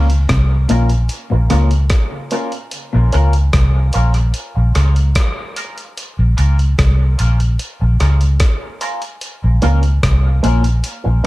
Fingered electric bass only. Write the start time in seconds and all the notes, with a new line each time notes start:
Already playing: C#2
0.30 C2
0.71 A#1
1.33 A#1
1.52 C#2
2.95 A#1
3.15 C#2
3.54 C2
3.95 A#1
4.57 A#1
4.76 C#2
6.19 A#1
6.39 C#2
6.79 C2
7.20 A#1
7.82 A#1
8.01 C#2
9.44 A#1
9.64 C#2
10.04 C2
10.45 A#1
11.06 A#1